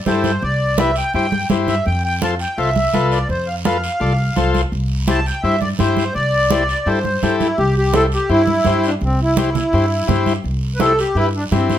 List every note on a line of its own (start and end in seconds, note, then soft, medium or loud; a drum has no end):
0.06 0.35 G2 medium
0.06 0.32 E4 medium
0.06 0.32 G4 medium
0.06 0.32 A4 medium
0.06 0.23 C5 medium
0.06 high conga medium
0.06 short guiro medium
0.24 0.43 C5 medium
0.24 high conga medium
0.24 short guiro medium
0.42 1.00 C2 medium
0.42 0.80 D5 medium
0.42 high conga soft
0.42 long guiro medium
0.77 0.91 E4 medium
0.77 0.91 G4 medium
0.77 0.92 B4 medium
0.77 0.95 E5 medium
0.77 high conga medium
0.77 short guiro medium
0.96 1.13 G5 medium
0.96 short guiro medium
1.14 1.43 G2 medium
1.14 1.27 E4 medium
1.14 1.27 G4 medium
1.14 1.27 C5 medium
1.14 1.48 G5 medium
1.14 high conga soft
1.14 long guiro medium
1.32 high conga medium
1.50 1.78 G2 medium
1.50 1.75 E4 medium
1.50 1.75 G4 medium
1.50 1.76 C5 medium
1.50 high conga medium
1.50 short guiro medium
1.68 1.85 E5 medium
1.68 high conga medium
1.68 short guiro medium
1.85 2.43 F2 medium
1.85 2.03 G5 medium
1.85 high conga soft
1.85 long guiro medium
2.04 2.21 G5 medium
2.22 2.35 F4 medium
2.22 2.35 A4 medium
2.22 2.35 C5 medium
2.22 2.31 A5 medium
2.22 high conga medium
2.22 short guiro medium
2.39 2.58 G5 medium
2.39 short guiro medium
2.57 2.86 C2 medium
2.57 2.70 F4 medium
2.57 2.70 A4 medium
2.57 2.71 C5 medium
2.57 3.07 E5 medium
2.57 high conga soft
2.57 long guiro medium
2.76 high conga medium
2.93 3.22 C2 medium
2.93 3.19 F4 medium
2.93 3.19 A4 medium
2.93 3.19 B4 medium
2.93 high conga medium
2.93 short guiro medium
3.12 3.28 D5 medium
3.12 short guiro medium
3.29 3.86 F2 medium
3.29 3.48 C5 medium
3.29 high conga soft
3.29 long guiro medium
3.47 3.55 F5 medium
3.65 3.77 F4 medium
3.65 3.78 A4 medium
3.65 3.78 B4 medium
3.65 4.51 F5 medium
3.65 high conga medium
3.65 short guiro medium
3.84 short guiro medium
4.00 4.29 C2 medium
4.00 4.13 F4 medium
4.00 4.13 A4 medium
4.00 4.13 D5 medium
4.00 high conga soft
4.00 long guiro medium
4.36 4.65 C2 medium
4.36 4.61 F4 medium
4.36 4.62 A4 medium
4.36 4.62 C5 medium
4.36 high conga medium
4.36 short guiro medium
4.54 high conga medium
4.54 short guiro medium
4.72 5.29 C2 medium
4.72 high conga soft
4.72 long guiro medium
5.08 5.20 E4 medium
5.08 5.20 G4 medium
5.08 5.21 C5 medium
5.08 5.26 A5 medium
5.08 high conga medium
5.08 short guiro medium
5.26 5.43 G5 medium
5.26 short guiro medium
5.43 5.72 G2 medium
5.43 5.56 E4 medium
5.43 5.56 G4 medium
5.43 5.57 C5 medium
5.43 5.60 E5 medium
5.43 high conga soft
5.43 long guiro medium
5.61 5.69 D5 medium
5.61 high conga medium
5.79 6.08 G2 medium
5.79 6.04 E4 medium
5.79 6.05 G4 medium
5.79 5.95 C5 medium
5.79 6.05 C5 medium
5.79 high conga medium
5.79 short guiro medium
5.97 6.14 C5 medium
5.97 high conga medium
5.97 short guiro medium
6.14 6.72 C2 medium
6.14 6.88 D5 medium
6.14 high conga soft
6.14 long guiro medium
6.50 6.63 E4 medium
6.50 6.64 G4 medium
6.50 6.64 C5 medium
6.50 high conga medium
6.50 short guiro medium
6.69 short guiro medium
6.86 7.15 G2 medium
6.86 6.99 E4 medium
6.86 6.99 G4 medium
6.86 7.00 A4 medium
6.86 7.36 C5 medium
6.86 high conga soft
6.86 long guiro medium
7.04 high conga medium
7.23 7.51 G2 medium
7.23 7.48 E4 medium
7.23 7.48 G4 medium
7.23 7.48 A4 medium
7.23 high conga medium
7.23 short guiro medium
7.40 7.59 E4 medium
7.40 high conga medium
7.40 short guiro medium
7.58 8.15 C2 medium
7.58 7.75 G4 medium
7.58 high conga soft
7.58 long guiro medium
7.78 7.94 G4 loud
7.93 8.06 E4 medium
7.93 8.07 G4 medium
7.93 8.03 A4 medium
7.93 8.07 C5 medium
7.93 high conga medium
7.93 short guiro medium
8.12 8.30 G4 medium
8.12 short guiro medium
8.29 8.58 G2 medium
8.29 8.42 E4 medium
8.29 8.86 E4 loud
8.29 8.42 G4 medium
8.29 8.43 C5 medium
8.29 high conga soft
8.29 long guiro medium
8.47 high conga medium
8.65 8.94 G2 medium
8.65 8.91 E4 medium
8.65 8.91 G4 medium
8.65 8.91 C5 medium
8.65 high conga medium
8.65 short guiro medium
8.84 8.94 D4 medium
8.84 short guiro medium
9.01 9.59 C2 medium
9.01 9.20 C4 medium
9.01 high conga soft
9.01 long guiro medium
9.22 9.37 E4 medium
9.37 9.50 E4 medium
9.37 10.24 E4 medium
9.37 9.50 G4 medium
9.37 9.50 C5 medium
9.37 high conga medium
9.37 short guiro medium
9.55 low conga medium
9.55 short guiro medium
9.73 10.02 G2 medium
9.73 9.86 E4 medium
9.73 9.86 G4 medium
9.73 9.86 C5 medium
9.73 high conga soft
9.73 long guiro medium
10.07 10.37 G2 medium
10.07 10.33 E4 medium
10.07 10.33 G4 medium
10.07 10.34 C5 medium
10.07 high conga medium
10.07 low conga medium
10.07 short guiro medium
10.26 high conga medium
10.26 short guiro medium
10.44 11.02 C2 medium
10.44 high conga soft
10.44 long guiro medium
10.75 10.80 B4 medium
10.80 10.93 E4 medium
10.80 10.93 G4 medium
10.80 10.99 A4 loud
10.80 10.93 C5 medium
10.80 high conga medium
10.80 short guiro medium
10.99 11.17 G4 medium
10.99 short guiro medium
11.15 11.44 G2 medium
11.15 11.29 E4 medium
11.15 11.26 E4 loud
11.15 11.29 G4 medium
11.15 11.29 B4 medium
11.15 high conga soft
11.15 long guiro medium
11.37 11.44 D4 medium
11.51 11.79 G2 medium
11.51 11.69 C4 medium
11.51 11.77 E4 medium
11.51 11.77 G4 medium
11.51 11.77 C5 medium
11.51 high conga medium
11.51 short guiro medium
11.70 11.79 C4 medium
11.70 high conga medium
11.70 short guiro medium